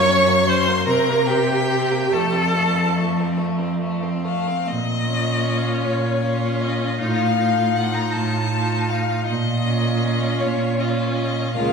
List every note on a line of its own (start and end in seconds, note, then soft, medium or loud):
0.00 0.85 F#2 loud
0.00 0.50 C#5 loud
0.00 0.49 C#6 loud
0.08 0.29 C#4 medium
0.28 0.47 A#3 medium
0.48 0.70 C#4 medium
0.48 0.86 C5 loud
0.48 0.86 C6 loud
0.68 0.87 A#3 medium
0.86 2.11 C3 medium
0.86 1.11 C4 medium
0.86 1.29 A#4 loud
0.86 1.27 A#5 loud
1.09 1.31 A#3 medium
1.26 1.51 C4 medium
1.26 2.14 G4 loud
1.26 2.14 G5 loud
1.50 1.70 A#3 medium
1.71 1.93 C4 medium
1.92 2.12 A#3 medium
2.12 4.42 F2 medium
2.12 2.34 A3 medium
2.12 3.41 A4 loud
2.12 3.40 A5 loud
2.33 2.57 C4 medium
2.55 2.76 A3 medium
2.75 2.96 C4 medium
2.97 3.21 A3 medium
3.19 3.39 C4 medium
3.37 3.60 A3 medium
3.59 3.80 C4 medium
3.80 4.04 A3 medium
4.02 4.26 C4 medium
4.24 4.49 A3 medium
4.24 4.69 F5 medium
4.47 4.68 C4 medium
4.67 5.71 A#2 medium
4.67 5.86 D#5 loud
5.06 6.21 C#4 medium
5.06 6.21 F4 medium
5.84 6.87 A#2 medium
5.84 6.63 C#5 medium
6.22 6.99 C#4 medium
6.22 6.99 F4 medium
6.61 6.99 D#5 medium
6.99 8.01 A2 medium
6.99 7.37 D#4 medium
6.99 7.37 F4 medium
6.99 7.77 F5 loud
7.37 8.50 D#4 medium
7.37 8.50 F4 medium
7.76 7.95 F#5 loud
7.94 8.14 A#5 loud
8.12 9.15 A2 medium
8.12 8.90 A5 loud
8.51 9.26 D#4 medium
8.51 9.26 F4 medium
8.89 9.26 F5 loud
9.26 10.27 A#2 medium
9.26 10.41 D#5 loud
9.63 10.76 C#4 medium
9.63 10.75 F4 medium
10.40 11.41 A#2 medium
10.40 10.82 C#5 loud
10.77 11.53 C#4 medium
10.77 11.53 F4 medium
10.77 10.90 D#5 medium
10.89 10.99 C#5 medium
10.98 11.08 C5 medium
11.07 11.16 C#5 medium
11.15 11.53 D#5 loud
11.53 11.73 C#2 medium
11.53 11.73 A#3 medium
11.53 11.73 F4 medium
11.53 11.73 F5 loud